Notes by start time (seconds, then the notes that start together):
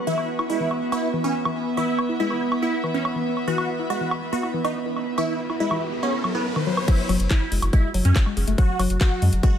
Already playing: B3 C#4 F#4 B4 F#5 C#6
0.07 E3 B3 E4
0.18 E5, high woodblock
0.39 E4, high woodblock
0.50 G#3 E4
0.60 E3
0.71 high woodblock
0.92 B3 E4, high woodblock
1.03 E4
1.13 E3
1.24 E3 C#4, high woodblock
1.45 E3, high woodblock
1.68 B5
1.77 E3 E4, high woodblock
1.99 high woodblock
2.09 E4
2.20 G#3 E4
2.30 E3, high woodblock
2.52 high woodblock
2.62 B3 E4
2.73 E4
2.84 E3, high woodblock
2.94 E3 C#4
3.05 high woodblock
3.16 E3
3.37 high woodblock
3.48 E3 F#4, riser
3.58 high woodblock
3.79 E4
3.90 G#3 F#4, high woodblock
4.01 E3
4.11 high woodblock
4.33 B3 F#4
4.43 E4, high woodblock
4.54 E3
4.65 E3 D#4, high woodblock
4.86 E3
4.96 high woodblock
5.18 E3 E4, high woodblock
5.50 E4, high woodblock
5.60 G#3 E4
5.71 E3, high woodblock
6.03 B3 C#4, high woodblock
6.13 E4
6.24 F#3, high woodblock
6.35 B3 E4
6.56 D#3, high woodblock
6.67 F#3
6.77 high woodblock
6.88 F#3 E4 F#4, kick, closed hi-hat, crash
7.09 F#1 F#3, open hi-hat, high woodblock
7.20 F#1, closed hi-hat
7.30 E4, kick, clap, closed hi-hat
7.52 F#1 G#3, open hi-hat
7.62 F#1, closed hi-hat, high woodblock
7.73 G#3 E4, kick, closed hi-hat
7.94 F#1 F#3, open hi-hat
8.05 F#2 C#4, closed hi-hat
8.16 C#4, kick, clap, closed hi-hat
8.26 G#3, high woodblock
8.37 F#1 G#4, open hi-hat
8.48 F#1 A3, closed hi-hat
8.58 F#3 F#4, kick, closed hi-hat
8.79 F#1 F#3, open hi-hat, high woodblock
8.90 F#1, closed hi-hat
9.01 F#4, kick, clap, closed hi-hat
9.22 F#2 G#3, open hi-hat
9.33 F#1, closed hi-hat
9.43 G#3 F#4, kick, closed hi-hat, high woodblock